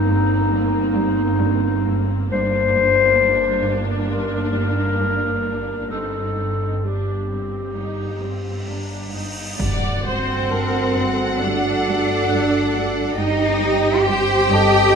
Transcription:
Already playing: double bass section G1, cello section G2, viola section A#3 C4, clarinet D#4, celesta D6
0.09 cello section G2, celesta A#5
0.52 cello section G3
0.95 cello section G3
1.40 cello section G2
1.86 cello section G2
2.31 double bass section G1, cello section G2, viola section A#3 D4, clarinet C5
2.76 cello section G2
3.21 cello section G2
3.63 cello section G2
4.09 cello section G3, clarinet A#4, celesta C6
4.54 cello section G3
4.99 cello section G2
5.44 cello section G2
5.90 double bass section G1, cello section G2, viola section C4 D#4, clarinet A4, cymbal swell
6.37 cello section G2
6.83 cello section G2, viola section D4, clarinet G4
7.30 cello section G2, viola section C4
7.75 cello section G3, viola section D#4
8.22 cello section G3, viola section C4
8.67 cello section G2, viola section D4, celesta A#5
9.14 cello section G2, viola section D#4
9.59 double bass section G1, cello section G2, french horn section A3 F#4, viola section D5, violin section F#5, impact
10.04 cello section G3 C4, viola section C5, violin section C5
10.50 cello section G2, viola section A#4, celesta A5
10.95 cello section G2, viola section A4
11.40 cello section G3 D4, violin section D5
11.86 cello section G3
12.29 cello section G2, celesta F#6
12.74 cello section G3
13.17 double bass section G1, cello section G2 D#4, french horn section C4 G4, viola section G4, violin section D#5 G5
13.63 cello section G3
14.06 cello section G2 G4, viola section C5, violin section G5
14.50 cello section G2, celesta A4 A5, viola section D#5

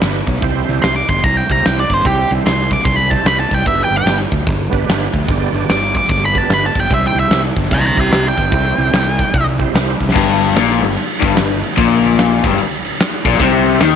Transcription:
Already playing: tonewheel organ B3 D4 G4 B4
0.01 fingered electric bass G1, snare, open hi-hat
0.27 fingered electric bass B1, kick
0.36 tonewheel organ C4 E4, snare
0.42 fingered electric bass C2, tonewheel organ G4 C5, kick, open hi-hat
0.69 fingered electric bass C2
0.82 fingered electric bass C2, lead electric guitar C6, snare, open hi-hat
0.96 lead electric guitar D6
1.09 fingered electric bass G1, lead electric guitar C6, kick
1.18 snare
1.24 fingered electric bass C2, lead electric guitar A#5, kick, open hi-hat
1.37 lead electric guitar G5
1.50 fingered electric bass C2, tonewheel organ C4 E4 G4 C5, lead electric guitar A#5, kick
1.65 fingered electric bass C2, lead electric guitar G5, snare, open hi-hat
1.80 lead electric guitar D5
1.90 fingered electric bass G1, lead electric guitar C5, kick
2.00 snare
2.04 fingered electric bass C2, tonewheel organ C4 E4 G4 C5, lead electric guitar G4, kick, open hi-hat
2.31 fingered electric bass C2
2.46 fingered electric bass C2, lead electric guitar C6, snare, open hi-hat
2.71 lead electric guitar D6, kick
2.79 snare
2.85 fingered electric bass C2, lead electric guitar C6, kick, open hi-hat
2.96 lead electric guitar B5
3.07 tonewheel organ C4 E4 G4 C5, lead electric guitar A5, kick
3.25 fingered electric bass C2, lead electric guitar B5, snare, open hi-hat
3.40 lead electric guitar A5
3.51 fingered electric bass C2, lead electric guitar G5, kick
3.66 fingered electric bass G1, tonewheel organ B3 D4 G4 B4, lead electric guitar E5, kick, open hi-hat
3.84 lead electric guitar G5
3.91 fingered electric bass G1
3.97 lead electric guitar G5
4.06 fingered electric bass G1, snare, open hi-hat
4.32 fingered electric bass D2, kick
4.47 fingered electric bass G1, kick, open hi-hat
4.70 fingered electric bass G1, tonewheel organ B3 D4 G4 B4, kick
4.89 fingered electric bass G1, snare, open hi-hat
5.14 fingered electric bass D2, kick
5.23 tonewheel organ B3, snare
5.28 fingered electric bass G1, tonewheel organ D4 G4 D5, kick, open hi-hat
5.53 fingered electric bass G1
5.69 fingered electric bass G1, lead electric guitar D6, snare, open hi-hat
5.95 lead electric guitar D6, kick
6.04 snare
6.09 fingered electric bass G1, lead electric guitar D6, kick, open hi-hat
6.26 lead electric guitar B5
6.32 tonewheel organ B3 D4 G4 B4, kick
6.38 lead electric guitar A5
6.50 fingered electric bass G1, lead electric guitar B5, snare, open hi-hat
6.66 lead electric guitar A5
6.75 fingered electric bass G1, kick
6.80 lead electric guitar G5
6.84 snare
6.89 fingered electric bass C2, tonewheel organ C4 E4 G4 C5, kick, open hi-hat
6.94 lead electric guitar E5
7.06 lead electric guitar G5
7.15 fingered electric bass C2
7.19 lead electric guitar E5
7.31 fingered electric bass C2, snare, open hi-hat
7.56 fingered electric bass G1, kick
7.65 snare
7.71 fingered electric bass C2, lead electric guitar G5 A#5, kick, open hi-hat
7.86 lead electric guitar G5 A#5
7.94 fingered electric bass C2, tonewheel organ C4 E4 G4 C5, kick
7.99 lead electric guitar E5 C6
8.12 fingered electric bass C2, lead electric guitar E5 C6, snare, open hi-hat
8.28 lead electric guitar G5
8.38 fingered electric bass G1, kick
8.51 fingered electric bass C2, tonewheel organ C4 E4 G4 C5, kick, open hi-hat
8.78 fingered electric bass C2
8.93 fingered electric bass C2, snare, open hi-hat
9.19 kick
9.34 fingered electric bass C2, kick, open hi-hat
9.59 tonewheel organ C4 E4 G4 C5, kick
9.74 fingered electric bass C2, snare, open hi-hat
10.00 fingered electric bass C2, kick
10.09 snare
10.14 fingered electric bass G1, overdriven electric guitar G2, kick, crash
10.42 crash
10.55 fingered electric bass A#1, overdriven electric guitar A#2, snare, crash
10.81 fingered electric bass G1, overdriven electric guitar G2, crash
10.91 snare
10.97 crash
11.20 fingered electric bass G1, overdriven electric guitar G2, kick, crash
11.36 fingered electric bass G1, overdriven electric guitar G2, snare, crash
11.63 crash
11.72 snare
11.77 fingered electric bass A#1, overdriven electric guitar A#2, kick, crash
12.04 crash
12.18 snare, crash
12.44 fingered electric bass G1, overdriven electric guitar G2, kick, crash
12.52 snare
12.58 crash
12.85 crash
13.00 snare, crash
13.25 fingered electric bass A#1, overdriven electric guitar A#2, kick, crash
13.33 snare
13.39 fingered electric bass C2, overdriven electric guitar C3, tonewheel organ G3 C4 G4 C5, kick, crash
13.66 crash
13.80 fingered electric bass D#2, overdriven electric guitar D#3, snare, crash

